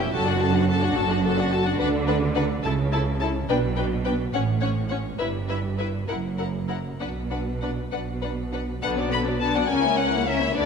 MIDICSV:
0, 0, Header, 1, 6, 480
1, 0, Start_track
1, 0, Key_signature, 2, "minor"
1, 0, Tempo, 560748
1, 113, Time_signature, 6, 3, 24, 8
1, 3954, Tempo, 589391
1, 5394, Tempo, 609756
1, 7314, Tempo, 576923
1, 8836, End_track
2, 0, Start_track
2, 0, Title_t, "Violin section"
2, 0, Program_c, 0, 48
2, 0, Note_on_c, 0, 79, 63
2, 107, Note_on_c, 0, 81, 65
2, 113, Note_off_c, 0, 79, 0
2, 220, Note_off_c, 0, 81, 0
2, 233, Note_on_c, 0, 78, 58
2, 351, Note_off_c, 0, 78, 0
2, 352, Note_on_c, 0, 81, 60
2, 470, Note_off_c, 0, 81, 0
2, 479, Note_on_c, 0, 78, 63
2, 592, Note_off_c, 0, 78, 0
2, 595, Note_on_c, 0, 81, 63
2, 702, Note_off_c, 0, 81, 0
2, 710, Note_on_c, 0, 78, 59
2, 826, Note_on_c, 0, 81, 64
2, 827, Note_off_c, 0, 78, 0
2, 944, Note_off_c, 0, 81, 0
2, 946, Note_on_c, 0, 78, 62
2, 1063, Note_off_c, 0, 78, 0
2, 1076, Note_on_c, 0, 81, 63
2, 1180, Note_off_c, 0, 81, 0
2, 1195, Note_on_c, 0, 78, 59
2, 1306, Note_on_c, 0, 81, 63
2, 1308, Note_off_c, 0, 78, 0
2, 1420, Note_on_c, 0, 78, 58
2, 1423, Note_off_c, 0, 81, 0
2, 1525, Note_off_c, 0, 78, 0
2, 1535, Note_on_c, 0, 78, 71
2, 1604, Note_off_c, 0, 78, 0
2, 1775, Note_on_c, 0, 78, 58
2, 1844, Note_off_c, 0, 78, 0
2, 2014, Note_on_c, 0, 78, 56
2, 2083, Note_off_c, 0, 78, 0
2, 2256, Note_on_c, 0, 81, 63
2, 2325, Note_off_c, 0, 81, 0
2, 2501, Note_on_c, 0, 81, 58
2, 2570, Note_off_c, 0, 81, 0
2, 2737, Note_on_c, 0, 81, 55
2, 2805, Note_off_c, 0, 81, 0
2, 2988, Note_on_c, 0, 79, 59
2, 3057, Note_off_c, 0, 79, 0
2, 3223, Note_on_c, 0, 79, 57
2, 3291, Note_off_c, 0, 79, 0
2, 3463, Note_on_c, 0, 79, 53
2, 3531, Note_off_c, 0, 79, 0
2, 3708, Note_on_c, 0, 78, 57
2, 3776, Note_off_c, 0, 78, 0
2, 3943, Note_on_c, 0, 78, 53
2, 4009, Note_off_c, 0, 78, 0
2, 4172, Note_on_c, 0, 78, 47
2, 4238, Note_off_c, 0, 78, 0
2, 4417, Note_on_c, 0, 76, 55
2, 4482, Note_off_c, 0, 76, 0
2, 4657, Note_on_c, 0, 76, 48
2, 4722, Note_off_c, 0, 76, 0
2, 4904, Note_on_c, 0, 76, 43
2, 4969, Note_off_c, 0, 76, 0
2, 5145, Note_on_c, 0, 78, 45
2, 5211, Note_off_c, 0, 78, 0
2, 5392, Note_on_c, 0, 78, 43
2, 5455, Note_off_c, 0, 78, 0
2, 5628, Note_on_c, 0, 78, 40
2, 5691, Note_off_c, 0, 78, 0
2, 5879, Note_on_c, 0, 78, 43
2, 5942, Note_off_c, 0, 78, 0
2, 6116, Note_on_c, 0, 78, 38
2, 6179, Note_off_c, 0, 78, 0
2, 6361, Note_on_c, 0, 78, 41
2, 6424, Note_off_c, 0, 78, 0
2, 6604, Note_on_c, 0, 78, 42
2, 6667, Note_off_c, 0, 78, 0
2, 6839, Note_on_c, 0, 78, 37
2, 6902, Note_off_c, 0, 78, 0
2, 7080, Note_on_c, 0, 78, 34
2, 7143, Note_off_c, 0, 78, 0
2, 7313, Note_on_c, 0, 78, 71
2, 7380, Note_off_c, 0, 78, 0
2, 7558, Note_on_c, 0, 83, 69
2, 7624, Note_off_c, 0, 83, 0
2, 7790, Note_on_c, 0, 81, 72
2, 7909, Note_off_c, 0, 81, 0
2, 7917, Note_on_c, 0, 78, 69
2, 8026, Note_on_c, 0, 80, 77
2, 8035, Note_off_c, 0, 78, 0
2, 8270, Note_off_c, 0, 80, 0
2, 8274, Note_on_c, 0, 78, 72
2, 8514, Note_off_c, 0, 78, 0
2, 8521, Note_on_c, 0, 76, 74
2, 8756, Note_off_c, 0, 76, 0
2, 8758, Note_on_c, 0, 74, 85
2, 8836, Note_off_c, 0, 74, 0
2, 8836, End_track
3, 0, Start_track
3, 0, Title_t, "Violin section"
3, 0, Program_c, 1, 48
3, 0, Note_on_c, 1, 64, 57
3, 110, Note_off_c, 1, 64, 0
3, 111, Note_on_c, 1, 69, 67
3, 222, Note_off_c, 1, 69, 0
3, 232, Note_on_c, 1, 66, 60
3, 347, Note_on_c, 1, 69, 57
3, 350, Note_off_c, 1, 66, 0
3, 468, Note_off_c, 1, 69, 0
3, 471, Note_on_c, 1, 66, 59
3, 589, Note_off_c, 1, 66, 0
3, 589, Note_on_c, 1, 69, 64
3, 699, Note_off_c, 1, 69, 0
3, 708, Note_on_c, 1, 66, 60
3, 823, Note_on_c, 1, 69, 63
3, 826, Note_off_c, 1, 66, 0
3, 939, Note_on_c, 1, 66, 65
3, 943, Note_off_c, 1, 69, 0
3, 1060, Note_off_c, 1, 66, 0
3, 1062, Note_on_c, 1, 69, 60
3, 1173, Note_off_c, 1, 69, 0
3, 1183, Note_on_c, 1, 66, 61
3, 1295, Note_on_c, 1, 69, 59
3, 1302, Note_off_c, 1, 66, 0
3, 1412, Note_on_c, 1, 66, 63
3, 1418, Note_off_c, 1, 69, 0
3, 1534, Note_on_c, 1, 71, 70
3, 1536, Note_off_c, 1, 66, 0
3, 1603, Note_off_c, 1, 71, 0
3, 1768, Note_on_c, 1, 71, 62
3, 1837, Note_off_c, 1, 71, 0
3, 2015, Note_on_c, 1, 71, 66
3, 2084, Note_off_c, 1, 71, 0
3, 2257, Note_on_c, 1, 69, 64
3, 2325, Note_off_c, 1, 69, 0
3, 2506, Note_on_c, 1, 69, 54
3, 2575, Note_off_c, 1, 69, 0
3, 2742, Note_on_c, 1, 69, 55
3, 2810, Note_off_c, 1, 69, 0
3, 2984, Note_on_c, 1, 71, 65
3, 3052, Note_off_c, 1, 71, 0
3, 3226, Note_on_c, 1, 71, 55
3, 3294, Note_off_c, 1, 71, 0
3, 3465, Note_on_c, 1, 71, 55
3, 3533, Note_off_c, 1, 71, 0
3, 3706, Note_on_c, 1, 73, 53
3, 3775, Note_off_c, 1, 73, 0
3, 3949, Note_on_c, 1, 73, 53
3, 4014, Note_off_c, 1, 73, 0
3, 4183, Note_on_c, 1, 73, 51
3, 4248, Note_off_c, 1, 73, 0
3, 4421, Note_on_c, 1, 71, 54
3, 4486, Note_off_c, 1, 71, 0
3, 4660, Note_on_c, 1, 71, 49
3, 4725, Note_off_c, 1, 71, 0
3, 4899, Note_on_c, 1, 71, 46
3, 4964, Note_off_c, 1, 71, 0
3, 5141, Note_on_c, 1, 70, 48
3, 5206, Note_off_c, 1, 70, 0
3, 5388, Note_on_c, 1, 70, 39
3, 5451, Note_off_c, 1, 70, 0
3, 5632, Note_on_c, 1, 70, 40
3, 5695, Note_off_c, 1, 70, 0
3, 5880, Note_on_c, 1, 71, 46
3, 5943, Note_off_c, 1, 71, 0
3, 6122, Note_on_c, 1, 71, 38
3, 6185, Note_off_c, 1, 71, 0
3, 6361, Note_on_c, 1, 71, 40
3, 6424, Note_off_c, 1, 71, 0
3, 6597, Note_on_c, 1, 71, 37
3, 6660, Note_off_c, 1, 71, 0
3, 6831, Note_on_c, 1, 71, 39
3, 6894, Note_off_c, 1, 71, 0
3, 7077, Note_on_c, 1, 71, 39
3, 7140, Note_off_c, 1, 71, 0
3, 7312, Note_on_c, 1, 71, 51
3, 7315, Note_on_c, 1, 59, 47
3, 7425, Note_off_c, 1, 71, 0
3, 7426, Note_off_c, 1, 59, 0
3, 7430, Note_on_c, 1, 62, 43
3, 7433, Note_on_c, 1, 74, 45
3, 7552, Note_off_c, 1, 62, 0
3, 7554, Note_off_c, 1, 74, 0
3, 7555, Note_on_c, 1, 71, 46
3, 7557, Note_on_c, 1, 59, 47
3, 7674, Note_off_c, 1, 71, 0
3, 7675, Note_off_c, 1, 59, 0
3, 7677, Note_on_c, 1, 74, 42
3, 7679, Note_on_c, 1, 62, 42
3, 7793, Note_on_c, 1, 59, 49
3, 7793, Note_on_c, 1, 71, 46
3, 7795, Note_off_c, 1, 74, 0
3, 7796, Note_off_c, 1, 62, 0
3, 7905, Note_off_c, 1, 59, 0
3, 7905, Note_off_c, 1, 71, 0
3, 7911, Note_on_c, 1, 74, 43
3, 7913, Note_on_c, 1, 62, 44
3, 8028, Note_on_c, 1, 61, 47
3, 8029, Note_on_c, 1, 70, 49
3, 8033, Note_off_c, 1, 62, 0
3, 8033, Note_off_c, 1, 74, 0
3, 8143, Note_off_c, 1, 61, 0
3, 8143, Note_off_c, 1, 70, 0
3, 8151, Note_on_c, 1, 64, 46
3, 8152, Note_on_c, 1, 73, 47
3, 8272, Note_on_c, 1, 70, 49
3, 8273, Note_off_c, 1, 64, 0
3, 8273, Note_off_c, 1, 73, 0
3, 8275, Note_on_c, 1, 61, 44
3, 8393, Note_off_c, 1, 70, 0
3, 8395, Note_off_c, 1, 61, 0
3, 8397, Note_on_c, 1, 73, 47
3, 8398, Note_on_c, 1, 64, 46
3, 8516, Note_off_c, 1, 64, 0
3, 8516, Note_off_c, 1, 73, 0
3, 8516, Note_on_c, 1, 61, 46
3, 8520, Note_on_c, 1, 70, 48
3, 8626, Note_off_c, 1, 61, 0
3, 8628, Note_off_c, 1, 70, 0
3, 8639, Note_on_c, 1, 73, 43
3, 8641, Note_on_c, 1, 64, 45
3, 8748, Note_on_c, 1, 62, 52
3, 8749, Note_on_c, 1, 71, 52
3, 8756, Note_off_c, 1, 73, 0
3, 8757, Note_off_c, 1, 64, 0
3, 8836, Note_off_c, 1, 62, 0
3, 8836, Note_off_c, 1, 71, 0
3, 8836, End_track
4, 0, Start_track
4, 0, Title_t, "Viola section"
4, 0, Program_c, 2, 48
4, 0, Note_on_c, 2, 61, 59
4, 96, Note_on_c, 2, 66, 64
4, 104, Note_off_c, 2, 61, 0
4, 214, Note_off_c, 2, 66, 0
4, 220, Note_on_c, 2, 62, 61
4, 337, Note_on_c, 2, 66, 64
4, 345, Note_off_c, 2, 62, 0
4, 452, Note_on_c, 2, 62, 57
4, 463, Note_off_c, 2, 66, 0
4, 574, Note_on_c, 2, 66, 66
4, 579, Note_off_c, 2, 62, 0
4, 691, Note_off_c, 2, 66, 0
4, 695, Note_on_c, 2, 62, 61
4, 819, Note_off_c, 2, 62, 0
4, 820, Note_on_c, 2, 66, 64
4, 937, Note_on_c, 2, 62, 59
4, 941, Note_off_c, 2, 66, 0
4, 1053, Note_on_c, 2, 66, 63
4, 1059, Note_off_c, 2, 62, 0
4, 1168, Note_off_c, 2, 66, 0
4, 1173, Note_on_c, 2, 62, 63
4, 1295, Note_on_c, 2, 66, 57
4, 1297, Note_off_c, 2, 62, 0
4, 1409, Note_on_c, 2, 62, 57
4, 1418, Note_off_c, 2, 66, 0
4, 1526, Note_off_c, 2, 62, 0
4, 1537, Note_on_c, 2, 62, 71
4, 1605, Note_off_c, 2, 62, 0
4, 1775, Note_on_c, 2, 62, 61
4, 1843, Note_off_c, 2, 62, 0
4, 2019, Note_on_c, 2, 62, 62
4, 2088, Note_off_c, 2, 62, 0
4, 2264, Note_on_c, 2, 64, 59
4, 2333, Note_off_c, 2, 64, 0
4, 2505, Note_on_c, 2, 64, 60
4, 2573, Note_off_c, 2, 64, 0
4, 2752, Note_on_c, 2, 64, 56
4, 2821, Note_off_c, 2, 64, 0
4, 2995, Note_on_c, 2, 62, 65
4, 3063, Note_off_c, 2, 62, 0
4, 3238, Note_on_c, 2, 62, 53
4, 3306, Note_off_c, 2, 62, 0
4, 3474, Note_on_c, 2, 62, 54
4, 3543, Note_off_c, 2, 62, 0
4, 3719, Note_on_c, 2, 61, 57
4, 3788, Note_off_c, 2, 61, 0
4, 3957, Note_on_c, 2, 61, 51
4, 4022, Note_off_c, 2, 61, 0
4, 4197, Note_on_c, 2, 61, 50
4, 4262, Note_off_c, 2, 61, 0
4, 4433, Note_on_c, 2, 64, 55
4, 4498, Note_off_c, 2, 64, 0
4, 4676, Note_on_c, 2, 64, 47
4, 4741, Note_off_c, 2, 64, 0
4, 4916, Note_on_c, 2, 64, 52
4, 4981, Note_off_c, 2, 64, 0
4, 5152, Note_on_c, 2, 64, 45
4, 5217, Note_off_c, 2, 64, 0
4, 5399, Note_on_c, 2, 64, 42
4, 5462, Note_off_c, 2, 64, 0
4, 5633, Note_on_c, 2, 64, 38
4, 5696, Note_off_c, 2, 64, 0
4, 5878, Note_on_c, 2, 62, 45
4, 5941, Note_off_c, 2, 62, 0
4, 6121, Note_on_c, 2, 62, 42
4, 6184, Note_off_c, 2, 62, 0
4, 6369, Note_on_c, 2, 62, 42
4, 6432, Note_off_c, 2, 62, 0
4, 6606, Note_on_c, 2, 62, 41
4, 6669, Note_off_c, 2, 62, 0
4, 6844, Note_on_c, 2, 62, 36
4, 6907, Note_off_c, 2, 62, 0
4, 7078, Note_on_c, 2, 62, 37
4, 7141, Note_off_c, 2, 62, 0
4, 7307, Note_on_c, 2, 50, 49
4, 7307, Note_on_c, 2, 62, 46
4, 7422, Note_off_c, 2, 50, 0
4, 7422, Note_off_c, 2, 62, 0
4, 7433, Note_on_c, 2, 59, 41
4, 7434, Note_on_c, 2, 54, 42
4, 7553, Note_off_c, 2, 59, 0
4, 7554, Note_off_c, 2, 54, 0
4, 7555, Note_on_c, 2, 62, 44
4, 7556, Note_on_c, 2, 50, 45
4, 7674, Note_on_c, 2, 54, 43
4, 7675, Note_off_c, 2, 50, 0
4, 7675, Note_off_c, 2, 62, 0
4, 7675, Note_on_c, 2, 59, 45
4, 7794, Note_off_c, 2, 54, 0
4, 7794, Note_off_c, 2, 59, 0
4, 7795, Note_on_c, 2, 62, 45
4, 7796, Note_on_c, 2, 50, 52
4, 7906, Note_off_c, 2, 50, 0
4, 7906, Note_off_c, 2, 62, 0
4, 7916, Note_on_c, 2, 59, 43
4, 7920, Note_on_c, 2, 54, 47
4, 8035, Note_off_c, 2, 59, 0
4, 8035, Note_on_c, 2, 61, 48
4, 8037, Note_off_c, 2, 54, 0
4, 8038, Note_off_c, 2, 61, 0
4, 8038, Note_on_c, 2, 61, 50
4, 8148, Note_off_c, 2, 61, 0
4, 8157, Note_on_c, 2, 58, 44
4, 8159, Note_off_c, 2, 58, 0
4, 8159, Note_on_c, 2, 58, 41
4, 8276, Note_on_c, 2, 61, 46
4, 8277, Note_off_c, 2, 58, 0
4, 8279, Note_off_c, 2, 61, 0
4, 8279, Note_on_c, 2, 61, 46
4, 8397, Note_off_c, 2, 61, 0
4, 8399, Note_on_c, 2, 58, 43
4, 8400, Note_off_c, 2, 58, 0
4, 8400, Note_on_c, 2, 58, 48
4, 8517, Note_off_c, 2, 58, 0
4, 8518, Note_on_c, 2, 61, 48
4, 8628, Note_off_c, 2, 61, 0
4, 8639, Note_on_c, 2, 58, 47
4, 8642, Note_off_c, 2, 58, 0
4, 8642, Note_on_c, 2, 58, 46
4, 8756, Note_on_c, 2, 62, 54
4, 8757, Note_off_c, 2, 58, 0
4, 8757, Note_on_c, 2, 50, 51
4, 8836, Note_off_c, 2, 50, 0
4, 8836, Note_off_c, 2, 62, 0
4, 8836, End_track
5, 0, Start_track
5, 0, Title_t, "Cello section"
5, 0, Program_c, 3, 48
5, 115, Note_on_c, 3, 42, 93
5, 742, Note_off_c, 3, 42, 0
5, 819, Note_on_c, 3, 42, 87
5, 1453, Note_off_c, 3, 42, 0
5, 1542, Note_on_c, 3, 50, 90
5, 2175, Note_off_c, 3, 50, 0
5, 2257, Note_on_c, 3, 49, 76
5, 2901, Note_off_c, 3, 49, 0
5, 2990, Note_on_c, 3, 47, 82
5, 3625, Note_off_c, 3, 47, 0
5, 3706, Note_on_c, 3, 45, 73
5, 4339, Note_off_c, 3, 45, 0
5, 4424, Note_on_c, 3, 43, 70
5, 5063, Note_off_c, 3, 43, 0
5, 5147, Note_on_c, 3, 42, 56
5, 5788, Note_off_c, 3, 42, 0
5, 5873, Note_on_c, 3, 47, 57
5, 6514, Note_off_c, 3, 47, 0
5, 6596, Note_on_c, 3, 47, 50
5, 7229, Note_off_c, 3, 47, 0
5, 7315, Note_on_c, 3, 47, 62
5, 7950, Note_off_c, 3, 47, 0
5, 8032, Note_on_c, 3, 37, 60
5, 8668, Note_off_c, 3, 37, 0
5, 8750, Note_on_c, 3, 38, 71
5, 8836, Note_off_c, 3, 38, 0
5, 8836, End_track
6, 0, Start_track
6, 0, Title_t, "Double bass section"
6, 0, Program_c, 4, 48
6, 110, Note_on_c, 4, 30, 92
6, 739, Note_off_c, 4, 30, 0
6, 822, Note_on_c, 4, 30, 84
6, 1454, Note_off_c, 4, 30, 0
6, 1535, Note_on_c, 4, 38, 86
6, 2172, Note_off_c, 4, 38, 0
6, 2262, Note_on_c, 4, 37, 77
6, 2904, Note_off_c, 4, 37, 0
6, 2989, Note_on_c, 4, 35, 80
6, 3625, Note_off_c, 4, 35, 0
6, 3711, Note_on_c, 4, 33, 70
6, 4342, Note_off_c, 4, 33, 0
6, 4427, Note_on_c, 4, 31, 66
6, 5065, Note_off_c, 4, 31, 0
6, 5149, Note_on_c, 4, 30, 61
6, 5789, Note_off_c, 4, 30, 0
6, 5878, Note_on_c, 4, 35, 56
6, 6517, Note_off_c, 4, 35, 0
6, 6600, Note_on_c, 4, 35, 52
6, 7231, Note_off_c, 4, 35, 0
6, 7311, Note_on_c, 4, 35, 61
6, 7948, Note_off_c, 4, 35, 0
6, 8033, Note_on_c, 4, 37, 64
6, 8669, Note_off_c, 4, 37, 0
6, 8754, Note_on_c, 4, 38, 63
6, 8836, Note_off_c, 4, 38, 0
6, 8836, End_track
0, 0, End_of_file